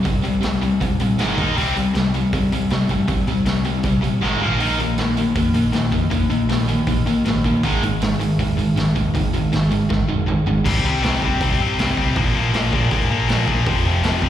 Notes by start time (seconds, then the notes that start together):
0.05 G1 C3 G3, kick, open hi-hat
0.24 C2 C3 G3, open hi-hat
0.42 C2 C3 G3, snare, open hi-hat
0.62 C3 G3, open hi-hat
0.81 C2 C3 G3, kick, open hi-hat
0.99 A#1 C3 G3, open hi-hat
1.18 G#1 G#2 D#3 G#3, snare, open hi-hat
1.37 D#2 D#3 A#3 D#4, kick, open hi-hat
1.56 C2 C3 G3 C4, open hi-hat
1.75 C2 C3 G3, open hi-hat
1.94 C2 C3 G3, snare, open hi-hat
2.14 C3 G3, open hi-hat
2.33 G2 C3 G3, kick, open hi-hat
2.52 C2 C3 G3, open hi-hat
2.70 C3 G3, snare, open hi-hat
2.89 G2 C3 G3, kick, open hi-hat
3.07 G1 C3 G3, kick, open hi-hat
3.27 C2 C3 G3, open hi-hat
3.46 C2 C3 G3, snare, open hi-hat
3.64 C3 G3, open hi-hat
3.83 C2 C3 G3, kick, open hi-hat
4.01 A#1 C3 G3, open hi-hat
4.21 G#1 G#2 D#3 G#3, snare
4.41 A#1 A#2 F3 A#3, floor tom
4.60 A#1 D#3 A#3 D#4, open hi-hat
4.78 A#1 D#3 A#3, open hi-hat
4.97 A#1 D#3 A#3, snare, open hi-hat
5.17 D#3 A#3, open hi-hat
5.35 F2 D#3 A#3, kick, open hi-hat
5.54 A#1 D#3 A#3, open hi-hat
5.72 A#2 D#3 A#3, snare, open hi-hat
5.92 F2 D#3 A#3, kick, open hi-hat
6.10 F1 D#3 A#3, kick, open hi-hat
6.30 A#1 D#3 A#3, open hi-hat
6.47 A#1 D#3 A#3, snare, open hi-hat
6.68 D#3 A#3, open hi-hat
6.87 A#1 D#3 A#3, kick, open hi-hat
7.05 G#1 D#3 A#3, open hi-hat
7.24 A#1 D#3 A#3, snare, open hi-hat
7.44 A#1 D#3 A#3, kick, open hi-hat
7.63 G#1 G#2 D#3 G#3, kick, open hi-hat
7.83 G#1 G#2 D#3, open hi-hat
8.01 G#1 G#2 D#3, snare, open hi-hat
8.19 G#2 D#3, open hi-hat
8.39 D#2 G#2 D#3, kick, open hi-hat
8.57 G#1 G#2 D#3, open hi-hat
8.75 G#2 D#3, snare, open hi-hat
8.95 D#2 G#2 D#3, kick, open hi-hat
9.14 D#2 G#2 D#3, kick, open hi-hat
9.34 G#1 G#2 D#3, open hi-hat
9.52 G#1 G#2 D#3, snare, open hi-hat
9.71 G#2 D#3, open hi-hat
9.89 G#1 G#2 D#3, kick, snare
10.08 F1 G#2 D#3
10.26 G#1 G#2 D#3, mid tom
10.47 G#1 G#2 D#3, floor tom
10.64 C2 C3 G3 C4, kick, crash
10.85 C2 C3 G3 C4
11.03 C2 C3 G3 C4, snare, open hi-hat
11.22 C3 G3 C4, kick
11.40 C2 C3 G3 C4, kick, open hi-hat
11.59 G2 C3 G3 C4
11.78 C2 C3 G3 C4, snare, open hi-hat
11.97 C2 C3 G3 C4, kick
12.16 A#1 A#2 F3 A#3, kick, open hi-hat
12.35 A#1 A#2 F3 A#3
12.53 A#1 A#2 F3 A#3, snare, open hi-hat
12.73 A#1 A#2 F3 A#3, kick
12.91 G#2 A#2 F3 A#3, kick, open hi-hat
13.10 A#1 A#2 F3 A#3
13.28 A#1 A#2 F3 A#3, snare, open hi-hat
13.48 A#1 A#2 F3 A#3, kick
13.66 F1 F2 C3 F3, kick, open hi-hat
13.85 F1 F2 C3 F3
14.03 F1 F2 C3 F3, snare, open hi-hat
14.22 F2 C3 F3, kick